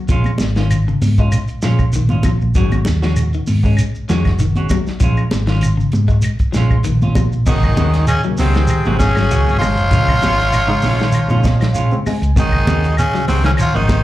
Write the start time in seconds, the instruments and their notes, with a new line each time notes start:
0.08 fingered electric bass A#1, clean electric guitar F3 G#3 C#4 F4, kick, closed hi-hat, shekere
0.24 high conga, claves, shekere
0.38 fingered electric bass G#1, snare, closed hi-hat, high conga, shekere
0.56 clean electric guitar D#3 C#4 F4, snare, closed hi-hat, shekere
0.71 closed hi-hat, claves, shekere
0.88 clean electric guitar C#3, shekere
1.02 fingered electric bass G#2, open hi-hat, high conga, shekere
1.18 clean electric guitar G#3 C#4 F4, kick, closed hi-hat, shekere
1.32 closed hi-hat, claves, shekere
1.48 closed hi-hat, shekere
1.62 fingered electric bass A#2, clean electric guitar F3 G#3 C#4 F4, snare, closed hi-hat, shekere
1.79 kick, claves, shekere
1.93 fingered electric bass A#1, clean electric guitar D#3, closed hi-hat, shekere
2.09 fingered electric bass A#2, clean electric guitar C#4 F4, high conga, shekere
2.23 clean electric guitar F3, kick, closed hi-hat, high conga, claves, shekere
2.41 fingered electric bass A#1, shekere
2.54 fingered electric bass G#1, clean electric guitar D#3 F#3 G#3 C#4 F#4, kick, closed hi-hat, shekere
2.72 closed hi-hat, high conga, claves, shekere
2.85 fingered electric bass D#2, snare, closed hi-hat, high conga, shekere
3.02 clean electric guitar F3 G#3 C#4 F#4, snare, high conga, shekere
3.16 closed hi-hat, claves, shekere
3.33 clean electric guitar D#3, shekere
3.47 fingered electric bass G#2, open hi-hat, high conga, shekere
3.63 clean electric guitar G#3 C#4, muted clean electric guitar stroke, kick, shekere
3.77 closed hi-hat, claves, shekere
3.95 shekere
4.09 fingered electric bass F2, clean electric guitar D#3 F3 G#3 C#4 F#4, snare, closed hi-hat, shekere
4.24 fingered electric bass F#1, kick, snare, closed hi-hat, claves, shekere
4.39 clean electric guitar D#3, closed hi-hat, shekere
4.56 clean electric guitar G#3 C#4 F#4, closed hi-hat, high conga, shekere
4.69 clean electric guitar F#3, kick, closed hi-hat, high conga, claves, shekere
4.87 snare, shekere
5.00 fingered electric bass A#1, clean electric guitar F3 G#3 C#4 F4, kick, closed hi-hat, shekere
5.17 claves, shekere
5.31 fingered electric bass G#1, snare, closed hi-hat, high conga, shekere
5.47 clean electric guitar D#3 C#4 F4, snare, closed hi-hat, shekere
5.61 closed hi-hat, claves, shekere
5.77 clean electric guitar C#3, shekere
5.92 fingered electric bass G#2, closed hi-hat, high conga, shekere
6.08 clean electric guitar G#3, muted clean electric guitar stroke, kick, closed hi-hat, shekere
6.22 closed hi-hat, claves, shekere
6.39 kick, closed hi-hat, shekere
6.52 fingered electric bass A#2, clean electric guitar F3 C#4, snare, closed hi-hat, shekere
6.56 clean electric guitar G#3 F4
6.71 kick, claves, shekere
6.84 fingered electric bass A#1, clean electric guitar D#3, closed hi-hat, shekere
7.02 fingered electric bass A#2, clean electric guitar C#4 F4, high conga, shekere
7.15 clean electric guitar F3, kick, closed hi-hat, high conga, claves, shekere
7.32 fingered electric bass A#1, shekere
7.46 fingered electric bass G#1, clean electric guitar C3 D#3 G#3 C#4 F#4, baritone saxophone D#3, tenor saxophone D#4, trumpet G#4, kick, crash, shekere
7.63 reed electric piano C#3 F#3 A#3, kick, claves, shekere
7.77 fingered electric bass D#2, clean electric guitar D#3 G#3 C#4 F#4, closed hi-hat, high conga, low conga, shekere
7.94 snare, closed hi-hat, shekere
8.07 baritone saxophone C#3, tenor saxophone C#4, trumpet G#4, closed hi-hat, claves, shekere
8.24 reed electric piano C#3 F#3 A#3, clean electric guitar F#3, shekere
8.37 fingered electric bass C#2, baritone saxophone C3, clean electric guitar D#3 G#3 C#4 F#4, tenor saxophone C4, trumpet G#4, snare, open hi-hat, high conga, low conga, shekere
8.55 clean electric guitar D#3, snare, closed hi-hat, shekere
8.67 closed hi-hat, claves, shekere
8.84 fingered electric bass G#1, reed electric piano C#3 F#3 A#3, clean electric guitar F3 G#3 C#4 F#4, high conga, shekere
8.98 baritone saxophone C#3, tenor saxophone C#4, trumpet G#4, kick, snare, closed hi-hat, high conga, shekere
9.16 fingered electric bass G#1, clean electric guitar F#3, snare, claves, shekere
9.30 fingered electric bass C#2, clean electric guitar D#3 G#3 C#4 F#4, closed hi-hat, shekere
9.46 fingered electric bass G#1, reed electric piano C#3 F#3 A#3, shekere
9.59 baritone saxophone F3, clean electric guitar G#3, tenor saxophone F4, trumpet C#5, open hi-hat, high conga, low conga, claves, shekere
9.63 fingered electric bass G#1
9.77 fingered electric bass F#1, closed hi-hat, shekere
9.91 fingered electric bass A#1, clean electric guitar C#3 G#3 C#4 F4, kick, closed hi-hat, low conga, shekere
10.07 reed electric piano C#3 G#3 C4, kick, claves, shekere
10.22 fingered electric bass G#1, clean electric guitar F3 G#3 C#4 F4, snare, closed hi-hat, high conga, shekere
10.40 snare, shekere
10.53 snare, closed hi-hat, claves, shekere
10.67 reed electric piano C#3 G#3 D#4, clean electric guitar G#3, shekere
10.82 fingered electric bass A#1, clean electric guitar G#3 C#4 F4, snare, open hi-hat, high conga, low conga, shekere
10.99 clean electric guitar D#3, snare, shekere
11.12 closed hi-hat, claves, shekere
11.28 fingered electric bass A#2, reed electric piano C#3 G#3 D#4, clean electric guitar F3 C#4 F4, high conga, shekere
11.44 reed electric piano D#5, kick, snare, closed hi-hat, high conga, shekere
11.61 clean electric guitar F3, snare, closed hi-hat, claves, shekere
11.73 clean electric guitar G#3 C#4 F4, reed electric piano F5, closed hi-hat, shekere
11.91 reed electric piano C#3 G#3 C4, shekere
12.06 clean electric guitar G#3, reed electric piano G#5, muted fingered electric bass stroke, open hi-hat, high conga, low conga, claves, shekere
12.22 fingered electric bass C#2, closed hi-hat, shekere
12.36 fingered electric bass G#1, clean electric guitar C3 D#3 G#3 C#4 F#4, baritone saxophone D#3, tenor saxophone D#4, trumpet G#4, kick, closed hi-hat, shekere
12.52 reed electric piano C#3 F#3 A#3, kick, claves, shekere
12.66 fingered electric bass D#2, clean electric guitar D#3 G#3 C#4 F#4, muted clean electric guitar stroke, closed hi-hat, high conga, low conga, shekere
12.84 closed hi-hat, shekere
12.97 baritone saxophone C#3, tenor saxophone C#4, trumpet G#4, closed hi-hat, high conga, claves, shekere
13.14 reed electric piano C#3 F#3 C#4, clean electric guitar F#3, muted fingered electric bass stroke, snare, shekere
13.27 fingered electric bass C#2, baritone saxophone C3, clean electric guitar D#3 G#3 C#4 F#4, tenor saxophone C4, trumpet G#4, open hi-hat, high conga, low conga, shekere
13.44 baritone saxophone C#3, clean electric guitar D#3, tenor saxophone C#4, trumpet A#4, snare, closed hi-hat, shekere
13.57 baritone saxophone F3, trumpet C#5, closed hi-hat, claves, shekere
13.61 tenor saxophone F4
13.72 fingered electric bass G#1, reed electric piano C#3 F#3 A#3, baritone saxophone D#3, clean electric guitar F3 G#3 C#4 F#4, tenor saxophone D#4, trumpet C5, shekere
13.89 kick, snare, closed hi-hat, high conga, shekere